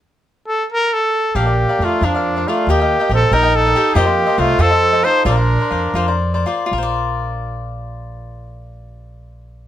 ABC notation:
X:1
M:6/8
L:1/16
Q:3/8=90
K:Bb
V:1 name="Cavaquinho"
z12 | [DBdf] [Bdf]2 [Bdf] [DBdf]2 [DBdf] [Bdf]2 [Bdf] [DBdf]2 | [GBeg] [Beg]2 [Beg] [GBeg]2 [GBeg] [Beg]2 [Beg] [GBeg]2 | [FBce] [Bce]2 [Bce] [FBce]2 [FAce] [Ace]2 [Ace] [FAce]2 |
[FBcd] [cd]2 [Bcd] [FBcd]2 [FBcd] [Bcd]2 [Bcd] [FBcd]2 | [FBcd]12- | [FBcd]12 |]
V:2 name="Trumpet"
z4 A2 B2 A4 | G4 F2 D4 F2 | G4 A2 B2 A4 | G4 F2 A4 c2 |
B8 z4 | z12 | z12 |]
V:3 name="Tenor saxophone"
z12 | B,4 A,2 F,4 A,2 | B,4 C2 E2 E4 | B,4 A,2 C4 E2 |
D8 z4 | z12 | z12 |]
V:4 name="Upright bass" clef=bass
z12 | B,,,4 F,,2 F,,6 | E,,4 B,,,2 B,,,6 | F,,4 C,,2 F,,6 |
B,,,4 F,,2 F,,6 | B,,,12- | B,,,12 |]